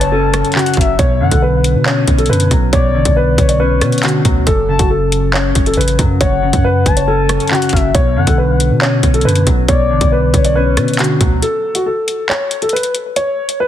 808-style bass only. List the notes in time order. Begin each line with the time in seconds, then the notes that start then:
Already playing: F#1
0.77 F#1
0.99 B1
1.21 F#2
1.32 B1
1.75 B2
2.08 B1
2.29 F#2
2.51 B1
2.73 B1
2.95 A1
3.05 B1
3.38 B1
3.82 B2
4.25 D2
4.47 F#1
4.79 F#1
5.55 F#1
5.77 A1
5.99 F#2
6.21 F#1
6.53 F#2
6.86 F#1
7.73 F#1
7.95 B1
8.16 F#2
8.27 B1
8.71 B2
9.03 B1
9.25 F#2
9.47 B1
9.68 B1
9.90 A1
10.01 B1
10.34 B1
10.77 B2
11.21 D2